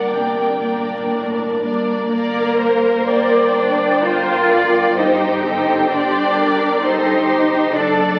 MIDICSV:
0, 0, Header, 1, 6, 480
1, 0, Start_track
1, 0, Key_signature, -2, "minor"
1, 0, Tempo, 1020408
1, 998, Tempo, 969305
1, 999, Time_signature, 3, 2, 24, 8
1, 1478, Tempo, 931677
1, 4105, End_track
2, 0, Start_track
2, 0, Title_t, "Violin section"
2, 0, Program_c, 0, 48
2, 37, Note_on_c, 0, 79, 46
2, 525, Note_off_c, 0, 79, 0
2, 1003, Note_on_c, 0, 82, 55
2, 1460, Note_off_c, 0, 82, 0
2, 1474, Note_on_c, 0, 79, 62
2, 2427, Note_off_c, 0, 79, 0
2, 2450, Note_on_c, 0, 79, 67
2, 3385, Note_off_c, 0, 79, 0
2, 3401, Note_on_c, 0, 84, 50
2, 3876, Note_off_c, 0, 84, 0
2, 3884, Note_on_c, 0, 81, 57
2, 4105, Note_off_c, 0, 81, 0
2, 4105, End_track
3, 0, Start_track
3, 0, Title_t, "Violin section"
3, 0, Program_c, 1, 48
3, 0, Note_on_c, 1, 70, 36
3, 0, Note_on_c, 1, 74, 37
3, 274, Note_off_c, 1, 74, 0
3, 276, Note_off_c, 1, 70, 0
3, 281, Note_on_c, 1, 70, 35
3, 282, Note_on_c, 1, 74, 30
3, 752, Note_off_c, 1, 70, 0
3, 753, Note_off_c, 1, 74, 0
3, 762, Note_on_c, 1, 74, 43
3, 764, Note_on_c, 1, 70, 40
3, 990, Note_off_c, 1, 70, 0
3, 992, Note_off_c, 1, 74, 0
3, 996, Note_on_c, 1, 70, 62
3, 997, Note_on_c, 1, 74, 67
3, 1222, Note_off_c, 1, 74, 0
3, 1241, Note_on_c, 1, 72, 61
3, 1953, Note_off_c, 1, 70, 0
3, 1959, Note_on_c, 1, 70, 64
3, 1968, Note_off_c, 1, 72, 0
3, 2200, Note_off_c, 1, 70, 0
3, 2206, Note_on_c, 1, 74, 67
3, 2441, Note_on_c, 1, 72, 64
3, 2443, Note_on_c, 1, 67, 59
3, 2447, Note_off_c, 1, 74, 0
3, 2680, Note_off_c, 1, 72, 0
3, 2688, Note_on_c, 1, 72, 59
3, 2923, Note_off_c, 1, 72, 0
3, 2927, Note_on_c, 1, 74, 67
3, 3381, Note_off_c, 1, 67, 0
3, 3398, Note_on_c, 1, 67, 58
3, 3400, Note_on_c, 1, 72, 67
3, 3402, Note_off_c, 1, 74, 0
3, 3628, Note_off_c, 1, 72, 0
3, 3634, Note_on_c, 1, 72, 59
3, 3865, Note_off_c, 1, 67, 0
3, 3870, Note_off_c, 1, 72, 0
3, 3876, Note_on_c, 1, 69, 61
3, 3877, Note_on_c, 1, 74, 62
3, 4105, Note_off_c, 1, 69, 0
3, 4105, Note_off_c, 1, 74, 0
3, 4105, End_track
4, 0, Start_track
4, 0, Title_t, "Viola section"
4, 0, Program_c, 2, 48
4, 0, Note_on_c, 2, 58, 32
4, 0, Note_on_c, 2, 62, 39
4, 275, Note_off_c, 2, 58, 0
4, 276, Note_off_c, 2, 62, 0
4, 290, Note_on_c, 2, 58, 34
4, 293, Note_on_c, 2, 62, 34
4, 757, Note_off_c, 2, 58, 0
4, 758, Note_off_c, 2, 62, 0
4, 765, Note_on_c, 2, 58, 43
4, 767, Note_on_c, 2, 62, 42
4, 994, Note_off_c, 2, 58, 0
4, 995, Note_off_c, 2, 62, 0
4, 997, Note_on_c, 2, 70, 75
4, 1457, Note_off_c, 2, 70, 0
4, 1479, Note_on_c, 2, 74, 69
4, 1964, Note_on_c, 2, 72, 70
4, 1967, Note_off_c, 2, 74, 0
4, 2207, Note_off_c, 2, 72, 0
4, 2209, Note_on_c, 2, 70, 62
4, 2447, Note_on_c, 2, 67, 66
4, 2449, Note_off_c, 2, 70, 0
4, 2682, Note_off_c, 2, 67, 0
4, 2694, Note_on_c, 2, 69, 56
4, 2929, Note_on_c, 2, 72, 59
4, 2931, Note_off_c, 2, 69, 0
4, 3166, Note_on_c, 2, 70, 62
4, 3167, Note_off_c, 2, 72, 0
4, 3397, Note_on_c, 2, 69, 62
4, 3403, Note_off_c, 2, 70, 0
4, 3631, Note_off_c, 2, 69, 0
4, 3633, Note_on_c, 2, 67, 62
4, 3869, Note_off_c, 2, 67, 0
4, 3869, Note_on_c, 2, 69, 80
4, 4105, Note_off_c, 2, 69, 0
4, 4105, End_track
5, 0, Start_track
5, 0, Title_t, "Cello section"
5, 0, Program_c, 3, 48
5, 37, Note_on_c, 3, 48, 49
5, 267, Note_off_c, 3, 48, 0
5, 287, Note_on_c, 3, 46, 41
5, 527, Note_off_c, 3, 46, 0
5, 527, Note_on_c, 3, 45, 51
5, 760, Note_off_c, 3, 45, 0
5, 764, Note_on_c, 3, 43, 41
5, 998, Note_off_c, 3, 43, 0
5, 1000, Note_on_c, 3, 58, 84
5, 1703, Note_off_c, 3, 58, 0
5, 1724, Note_on_c, 3, 62, 78
5, 1962, Note_off_c, 3, 62, 0
5, 1967, Note_on_c, 3, 65, 98
5, 2448, Note_off_c, 3, 65, 0
5, 2448, Note_on_c, 3, 63, 78
5, 2926, Note_on_c, 3, 62, 76
5, 2928, Note_off_c, 3, 63, 0
5, 3402, Note_off_c, 3, 62, 0
5, 3402, Note_on_c, 3, 63, 91
5, 3867, Note_off_c, 3, 63, 0
5, 3877, Note_on_c, 3, 62, 91
5, 4105, Note_off_c, 3, 62, 0
5, 4105, End_track
6, 0, Start_track
6, 0, Title_t, "Double bass section"
6, 0, Program_c, 4, 48
6, 40, Note_on_c, 4, 31, 44
6, 470, Note_off_c, 4, 31, 0
6, 526, Note_on_c, 4, 31, 43
6, 944, Note_off_c, 4, 31, 0
6, 996, Note_on_c, 4, 31, 64
6, 3855, Note_off_c, 4, 31, 0
6, 3875, Note_on_c, 4, 30, 63
6, 4105, Note_off_c, 4, 30, 0
6, 4105, End_track
0, 0, End_of_file